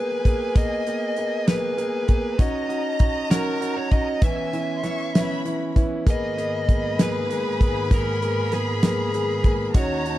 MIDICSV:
0, 0, Header, 1, 6, 480
1, 0, Start_track
1, 0, Key_signature, 5, "minor"
1, 0, Tempo, 613497
1, 432, Time_signature, 6, 3, 24, 8
1, 7967, End_track
2, 0, Start_track
2, 0, Title_t, "Violin section"
2, 0, Program_c, 0, 48
2, 0, Note_on_c, 0, 80, 89
2, 1840, Note_off_c, 0, 80, 0
2, 1873, Note_on_c, 0, 82, 120
2, 3305, Note_off_c, 0, 82, 0
2, 3321, Note_on_c, 0, 80, 94
2, 3734, Note_on_c, 0, 84, 68
2, 3738, Note_off_c, 0, 80, 0
2, 3773, Note_on_c, 0, 85, 95
2, 3786, Note_off_c, 0, 84, 0
2, 4020, Note_off_c, 0, 85, 0
2, 4037, Note_on_c, 0, 83, 95
2, 4482, Note_off_c, 0, 83, 0
2, 4757, Note_on_c, 0, 83, 113
2, 7603, Note_off_c, 0, 83, 0
2, 7631, Note_on_c, 0, 82, 126
2, 7967, Note_off_c, 0, 82, 0
2, 7967, End_track
3, 0, Start_track
3, 0, Title_t, "Lead electric guitar"
3, 0, Program_c, 1, 29
3, 0, Note_on_c, 1, 71, 86
3, 446, Note_on_c, 1, 75, 104
3, 459, Note_off_c, 1, 71, 0
3, 1129, Note_off_c, 1, 75, 0
3, 1161, Note_on_c, 1, 71, 99
3, 1884, Note_on_c, 1, 75, 103
3, 1895, Note_off_c, 1, 71, 0
3, 2562, Note_off_c, 1, 75, 0
3, 2587, Note_on_c, 1, 70, 90
3, 2947, Note_on_c, 1, 73, 89
3, 2956, Note_off_c, 1, 70, 0
3, 3065, Note_off_c, 1, 73, 0
3, 3068, Note_on_c, 1, 75, 95
3, 3313, Note_off_c, 1, 75, 0
3, 3318, Note_on_c, 1, 76, 95
3, 4242, Note_off_c, 1, 76, 0
3, 4775, Note_on_c, 1, 75, 104
3, 5494, Note_on_c, 1, 71, 88
3, 5506, Note_off_c, 1, 75, 0
3, 6207, Note_off_c, 1, 71, 0
3, 6211, Note_on_c, 1, 70, 104
3, 6679, Note_off_c, 1, 70, 0
3, 6682, Note_on_c, 1, 68, 91
3, 6924, Note_off_c, 1, 68, 0
3, 6937, Note_on_c, 1, 68, 92
3, 7432, Note_off_c, 1, 68, 0
3, 7648, Note_on_c, 1, 73, 103
3, 7967, Note_off_c, 1, 73, 0
3, 7967, End_track
4, 0, Start_track
4, 0, Title_t, "Grand piano"
4, 0, Program_c, 2, 0
4, 0, Note_on_c, 2, 58, 67
4, 0, Note_on_c, 2, 59, 61
4, 0, Note_on_c, 2, 68, 69
4, 161, Note_off_c, 2, 58, 0
4, 161, Note_off_c, 2, 59, 0
4, 163, Note_off_c, 2, 68, 0
4, 199, Note_on_c, 2, 58, 80
4, 202, Note_on_c, 2, 59, 68
4, 203, Note_on_c, 2, 68, 82
4, 399, Note_off_c, 2, 58, 0
4, 400, Note_off_c, 2, 59, 0
4, 401, Note_off_c, 2, 68, 0
4, 429, Note_on_c, 2, 58, 93
4, 437, Note_on_c, 2, 59, 83
4, 439, Note_on_c, 2, 68, 100
4, 634, Note_off_c, 2, 58, 0
4, 638, Note_off_c, 2, 59, 0
4, 639, Note_off_c, 2, 68, 0
4, 682, Note_on_c, 2, 58, 78
4, 685, Note_on_c, 2, 68, 82
4, 686, Note_on_c, 2, 59, 68
4, 881, Note_off_c, 2, 58, 0
4, 882, Note_off_c, 2, 59, 0
4, 882, Note_off_c, 2, 68, 0
4, 919, Note_on_c, 2, 58, 72
4, 921, Note_on_c, 2, 68, 71
4, 922, Note_on_c, 2, 59, 64
4, 1119, Note_off_c, 2, 58, 0
4, 1120, Note_off_c, 2, 59, 0
4, 1120, Note_off_c, 2, 68, 0
4, 1147, Note_on_c, 2, 58, 85
4, 1148, Note_on_c, 2, 59, 89
4, 1151, Note_on_c, 2, 68, 90
4, 1352, Note_off_c, 2, 58, 0
4, 1353, Note_off_c, 2, 59, 0
4, 1354, Note_off_c, 2, 68, 0
4, 1386, Note_on_c, 2, 58, 75
4, 1388, Note_on_c, 2, 59, 72
4, 1393, Note_on_c, 2, 68, 81
4, 1591, Note_off_c, 2, 58, 0
4, 1592, Note_off_c, 2, 59, 0
4, 1595, Note_off_c, 2, 68, 0
4, 1622, Note_on_c, 2, 58, 80
4, 1624, Note_on_c, 2, 59, 75
4, 1627, Note_on_c, 2, 68, 89
4, 1828, Note_off_c, 2, 58, 0
4, 1829, Note_off_c, 2, 59, 0
4, 1831, Note_off_c, 2, 68, 0
4, 1866, Note_on_c, 2, 61, 98
4, 1871, Note_on_c, 2, 63, 84
4, 1874, Note_on_c, 2, 66, 98
4, 2070, Note_off_c, 2, 61, 0
4, 2072, Note_off_c, 2, 63, 0
4, 2074, Note_off_c, 2, 66, 0
4, 2101, Note_on_c, 2, 61, 72
4, 2104, Note_on_c, 2, 66, 92
4, 2106, Note_on_c, 2, 63, 75
4, 2307, Note_off_c, 2, 61, 0
4, 2308, Note_off_c, 2, 66, 0
4, 2309, Note_off_c, 2, 63, 0
4, 2343, Note_on_c, 2, 61, 67
4, 2348, Note_on_c, 2, 63, 66
4, 2349, Note_on_c, 2, 66, 76
4, 2547, Note_off_c, 2, 61, 0
4, 2549, Note_off_c, 2, 63, 0
4, 2550, Note_off_c, 2, 66, 0
4, 2585, Note_on_c, 2, 61, 100
4, 2588, Note_on_c, 2, 66, 105
4, 2589, Note_on_c, 2, 63, 91
4, 2787, Note_off_c, 2, 61, 0
4, 2789, Note_off_c, 2, 63, 0
4, 2789, Note_off_c, 2, 66, 0
4, 2817, Note_on_c, 2, 61, 65
4, 2823, Note_on_c, 2, 66, 82
4, 2824, Note_on_c, 2, 63, 67
4, 3023, Note_off_c, 2, 61, 0
4, 3026, Note_off_c, 2, 66, 0
4, 3027, Note_off_c, 2, 63, 0
4, 3063, Note_on_c, 2, 61, 78
4, 3068, Note_on_c, 2, 63, 74
4, 3070, Note_on_c, 2, 66, 84
4, 3266, Note_off_c, 2, 61, 0
4, 3269, Note_off_c, 2, 63, 0
4, 3270, Note_off_c, 2, 66, 0
4, 3300, Note_on_c, 2, 52, 97
4, 3303, Note_on_c, 2, 61, 78
4, 3305, Note_on_c, 2, 59, 77
4, 3305, Note_on_c, 2, 64, 98
4, 3505, Note_off_c, 2, 52, 0
4, 3506, Note_off_c, 2, 61, 0
4, 3507, Note_off_c, 2, 59, 0
4, 3507, Note_off_c, 2, 64, 0
4, 3543, Note_on_c, 2, 52, 72
4, 3547, Note_on_c, 2, 59, 67
4, 3549, Note_on_c, 2, 61, 66
4, 3549, Note_on_c, 2, 64, 86
4, 3746, Note_off_c, 2, 52, 0
4, 3749, Note_off_c, 2, 59, 0
4, 3750, Note_off_c, 2, 61, 0
4, 3750, Note_off_c, 2, 64, 0
4, 3779, Note_on_c, 2, 52, 68
4, 3779, Note_on_c, 2, 59, 56
4, 3780, Note_on_c, 2, 61, 63
4, 3783, Note_on_c, 2, 64, 79
4, 3985, Note_off_c, 2, 52, 0
4, 3985, Note_off_c, 2, 59, 0
4, 3986, Note_off_c, 2, 61, 0
4, 3987, Note_off_c, 2, 64, 0
4, 4031, Note_on_c, 2, 52, 81
4, 4031, Note_on_c, 2, 61, 84
4, 4033, Note_on_c, 2, 64, 96
4, 4035, Note_on_c, 2, 59, 84
4, 4232, Note_off_c, 2, 52, 0
4, 4232, Note_off_c, 2, 61, 0
4, 4233, Note_off_c, 2, 64, 0
4, 4234, Note_off_c, 2, 59, 0
4, 4264, Note_on_c, 2, 52, 68
4, 4267, Note_on_c, 2, 61, 64
4, 4268, Note_on_c, 2, 59, 59
4, 4271, Note_on_c, 2, 64, 75
4, 4469, Note_off_c, 2, 52, 0
4, 4470, Note_off_c, 2, 61, 0
4, 4471, Note_off_c, 2, 59, 0
4, 4472, Note_off_c, 2, 64, 0
4, 4502, Note_on_c, 2, 59, 65
4, 4504, Note_on_c, 2, 52, 68
4, 4507, Note_on_c, 2, 61, 67
4, 4510, Note_on_c, 2, 64, 87
4, 4708, Note_off_c, 2, 59, 0
4, 4709, Note_off_c, 2, 52, 0
4, 4711, Note_off_c, 2, 61, 0
4, 4712, Note_off_c, 2, 64, 0
4, 4746, Note_on_c, 2, 58, 93
4, 4746, Note_on_c, 2, 59, 79
4, 4749, Note_on_c, 2, 68, 100
4, 4950, Note_off_c, 2, 58, 0
4, 4951, Note_off_c, 2, 59, 0
4, 4952, Note_off_c, 2, 68, 0
4, 4987, Note_on_c, 2, 58, 78
4, 4990, Note_on_c, 2, 59, 71
4, 4992, Note_on_c, 2, 68, 78
4, 5192, Note_off_c, 2, 58, 0
4, 5193, Note_off_c, 2, 59, 0
4, 5194, Note_off_c, 2, 68, 0
4, 5230, Note_on_c, 2, 58, 69
4, 5235, Note_on_c, 2, 59, 65
4, 5237, Note_on_c, 2, 68, 70
4, 5434, Note_off_c, 2, 58, 0
4, 5436, Note_off_c, 2, 59, 0
4, 5438, Note_off_c, 2, 68, 0
4, 5467, Note_on_c, 2, 58, 88
4, 5467, Note_on_c, 2, 59, 82
4, 5469, Note_on_c, 2, 68, 99
4, 5673, Note_off_c, 2, 58, 0
4, 5673, Note_off_c, 2, 59, 0
4, 5674, Note_off_c, 2, 68, 0
4, 5705, Note_on_c, 2, 58, 71
4, 5709, Note_on_c, 2, 59, 64
4, 5711, Note_on_c, 2, 68, 73
4, 5912, Note_off_c, 2, 58, 0
4, 5914, Note_off_c, 2, 59, 0
4, 5915, Note_off_c, 2, 68, 0
4, 5943, Note_on_c, 2, 58, 74
4, 5948, Note_on_c, 2, 59, 68
4, 5951, Note_on_c, 2, 68, 88
4, 6151, Note_off_c, 2, 58, 0
4, 6153, Note_off_c, 2, 59, 0
4, 6155, Note_off_c, 2, 68, 0
4, 6184, Note_on_c, 2, 58, 93
4, 6188, Note_on_c, 2, 68, 92
4, 6189, Note_on_c, 2, 59, 91
4, 6391, Note_off_c, 2, 58, 0
4, 6393, Note_off_c, 2, 59, 0
4, 6393, Note_off_c, 2, 68, 0
4, 6429, Note_on_c, 2, 58, 75
4, 6431, Note_on_c, 2, 59, 73
4, 6435, Note_on_c, 2, 68, 78
4, 6634, Note_off_c, 2, 58, 0
4, 6635, Note_off_c, 2, 59, 0
4, 6637, Note_off_c, 2, 68, 0
4, 6667, Note_on_c, 2, 58, 73
4, 6672, Note_on_c, 2, 59, 60
4, 6673, Note_on_c, 2, 68, 78
4, 6872, Note_off_c, 2, 58, 0
4, 6875, Note_off_c, 2, 59, 0
4, 6875, Note_off_c, 2, 68, 0
4, 6906, Note_on_c, 2, 58, 94
4, 6910, Note_on_c, 2, 68, 95
4, 6911, Note_on_c, 2, 59, 84
4, 7112, Note_off_c, 2, 58, 0
4, 7114, Note_off_c, 2, 59, 0
4, 7114, Note_off_c, 2, 68, 0
4, 7151, Note_on_c, 2, 58, 66
4, 7155, Note_on_c, 2, 59, 71
4, 7156, Note_on_c, 2, 68, 86
4, 7354, Note_off_c, 2, 58, 0
4, 7356, Note_off_c, 2, 59, 0
4, 7356, Note_off_c, 2, 68, 0
4, 7396, Note_on_c, 2, 59, 74
4, 7398, Note_on_c, 2, 58, 83
4, 7402, Note_on_c, 2, 68, 94
4, 7595, Note_off_c, 2, 59, 0
4, 7596, Note_off_c, 2, 58, 0
4, 7598, Note_off_c, 2, 68, 0
4, 7622, Note_on_c, 2, 61, 100
4, 7624, Note_on_c, 2, 63, 91
4, 7628, Note_on_c, 2, 66, 111
4, 7828, Note_off_c, 2, 61, 0
4, 7829, Note_off_c, 2, 63, 0
4, 7831, Note_off_c, 2, 66, 0
4, 7867, Note_on_c, 2, 61, 78
4, 7868, Note_on_c, 2, 63, 65
4, 7871, Note_on_c, 2, 66, 89
4, 7967, Note_off_c, 2, 61, 0
4, 7967, Note_off_c, 2, 63, 0
4, 7967, Note_off_c, 2, 66, 0
4, 7967, End_track
5, 0, Start_track
5, 0, Title_t, "String section"
5, 0, Program_c, 3, 48
5, 4744, Note_on_c, 3, 51, 66
5, 4744, Note_on_c, 3, 68, 77
5, 4745, Note_on_c, 3, 59, 63
5, 4752, Note_on_c, 3, 44, 76
5, 7599, Note_off_c, 3, 51, 0
5, 7599, Note_off_c, 3, 68, 0
5, 7600, Note_off_c, 3, 59, 0
5, 7603, Note_off_c, 3, 44, 0
5, 7627, Note_on_c, 3, 51, 73
5, 7629, Note_on_c, 3, 39, 81
5, 7632, Note_on_c, 3, 66, 77
5, 7632, Note_on_c, 3, 73, 96
5, 7967, Note_off_c, 3, 39, 0
5, 7967, Note_off_c, 3, 51, 0
5, 7967, Note_off_c, 3, 66, 0
5, 7967, Note_off_c, 3, 73, 0
5, 7967, End_track
6, 0, Start_track
6, 0, Title_t, "Drums"
6, 197, Note_on_c, 9, 36, 74
6, 200, Note_on_c, 9, 42, 50
6, 275, Note_off_c, 9, 36, 0
6, 278, Note_off_c, 9, 42, 0
6, 435, Note_on_c, 9, 36, 103
6, 435, Note_on_c, 9, 42, 89
6, 513, Note_off_c, 9, 42, 0
6, 514, Note_off_c, 9, 36, 0
6, 678, Note_on_c, 9, 42, 48
6, 757, Note_off_c, 9, 42, 0
6, 912, Note_on_c, 9, 42, 49
6, 990, Note_off_c, 9, 42, 0
6, 1155, Note_on_c, 9, 42, 100
6, 1157, Note_on_c, 9, 38, 102
6, 1234, Note_off_c, 9, 42, 0
6, 1235, Note_off_c, 9, 38, 0
6, 1395, Note_on_c, 9, 42, 51
6, 1473, Note_off_c, 9, 42, 0
6, 1631, Note_on_c, 9, 42, 50
6, 1634, Note_on_c, 9, 36, 79
6, 1709, Note_off_c, 9, 42, 0
6, 1712, Note_off_c, 9, 36, 0
6, 1870, Note_on_c, 9, 36, 107
6, 1870, Note_on_c, 9, 42, 95
6, 1948, Note_off_c, 9, 36, 0
6, 1949, Note_off_c, 9, 42, 0
6, 2112, Note_on_c, 9, 42, 43
6, 2190, Note_off_c, 9, 42, 0
6, 2341, Note_on_c, 9, 42, 50
6, 2348, Note_on_c, 9, 36, 87
6, 2419, Note_off_c, 9, 42, 0
6, 2426, Note_off_c, 9, 36, 0
6, 2590, Note_on_c, 9, 42, 106
6, 2591, Note_on_c, 9, 38, 96
6, 2668, Note_off_c, 9, 42, 0
6, 2670, Note_off_c, 9, 38, 0
6, 2831, Note_on_c, 9, 42, 52
6, 2910, Note_off_c, 9, 42, 0
6, 3062, Note_on_c, 9, 42, 50
6, 3064, Note_on_c, 9, 36, 76
6, 3140, Note_off_c, 9, 42, 0
6, 3142, Note_off_c, 9, 36, 0
6, 3300, Note_on_c, 9, 42, 104
6, 3301, Note_on_c, 9, 36, 108
6, 3378, Note_off_c, 9, 42, 0
6, 3380, Note_off_c, 9, 36, 0
6, 3547, Note_on_c, 9, 42, 44
6, 3625, Note_off_c, 9, 42, 0
6, 3783, Note_on_c, 9, 42, 49
6, 3790, Note_on_c, 9, 38, 33
6, 3861, Note_off_c, 9, 42, 0
6, 3868, Note_off_c, 9, 38, 0
6, 4031, Note_on_c, 9, 42, 105
6, 4032, Note_on_c, 9, 38, 115
6, 4109, Note_off_c, 9, 42, 0
6, 4111, Note_off_c, 9, 38, 0
6, 4268, Note_on_c, 9, 42, 48
6, 4346, Note_off_c, 9, 42, 0
6, 4508, Note_on_c, 9, 36, 78
6, 4508, Note_on_c, 9, 42, 54
6, 4586, Note_off_c, 9, 36, 0
6, 4586, Note_off_c, 9, 42, 0
6, 4746, Note_on_c, 9, 36, 108
6, 4749, Note_on_c, 9, 42, 103
6, 4825, Note_off_c, 9, 36, 0
6, 4828, Note_off_c, 9, 42, 0
6, 4996, Note_on_c, 9, 42, 49
6, 5074, Note_off_c, 9, 42, 0
6, 5232, Note_on_c, 9, 36, 89
6, 5232, Note_on_c, 9, 42, 53
6, 5310, Note_off_c, 9, 36, 0
6, 5310, Note_off_c, 9, 42, 0
6, 5471, Note_on_c, 9, 42, 108
6, 5472, Note_on_c, 9, 38, 109
6, 5549, Note_off_c, 9, 42, 0
6, 5550, Note_off_c, 9, 38, 0
6, 5716, Note_on_c, 9, 42, 50
6, 5794, Note_off_c, 9, 42, 0
6, 5952, Note_on_c, 9, 36, 85
6, 5953, Note_on_c, 9, 42, 45
6, 6030, Note_off_c, 9, 36, 0
6, 6032, Note_off_c, 9, 42, 0
6, 6189, Note_on_c, 9, 36, 103
6, 6190, Note_on_c, 9, 42, 90
6, 6267, Note_off_c, 9, 36, 0
6, 6268, Note_off_c, 9, 42, 0
6, 6434, Note_on_c, 9, 42, 46
6, 6512, Note_off_c, 9, 42, 0
6, 6664, Note_on_c, 9, 42, 54
6, 6671, Note_on_c, 9, 38, 39
6, 6742, Note_off_c, 9, 42, 0
6, 6749, Note_off_c, 9, 38, 0
6, 6907, Note_on_c, 9, 42, 101
6, 6909, Note_on_c, 9, 38, 109
6, 6986, Note_off_c, 9, 42, 0
6, 6987, Note_off_c, 9, 38, 0
6, 7151, Note_on_c, 9, 42, 50
6, 7230, Note_off_c, 9, 42, 0
6, 7386, Note_on_c, 9, 42, 50
6, 7388, Note_on_c, 9, 36, 81
6, 7464, Note_off_c, 9, 42, 0
6, 7466, Note_off_c, 9, 36, 0
6, 7624, Note_on_c, 9, 42, 95
6, 7625, Note_on_c, 9, 36, 110
6, 7702, Note_off_c, 9, 42, 0
6, 7704, Note_off_c, 9, 36, 0
6, 7868, Note_on_c, 9, 42, 43
6, 7946, Note_off_c, 9, 42, 0
6, 7967, End_track
0, 0, End_of_file